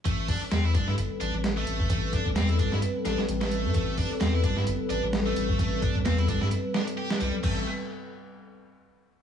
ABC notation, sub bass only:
X:1
M:4/4
L:1/16
Q:"Swing 16ths" 1/4=130
K:Am
V:1 name="Sub bass" clef=bass
A,,,3 z E,,2 C,, G,, G,,, z A,,, A,,,3 A,,,2 | A,,,3 E,, E,,2 C,, G,, z2 A,,, A,,, A,,,3 G,, | A,,,3 z E,,2 C,, G,, G,,, z A,,, A,,,3 A,,,2 | A,,,3 E,, E,,2 C,, G,, z6 C,, z |
A,,,2 z12 z2 |]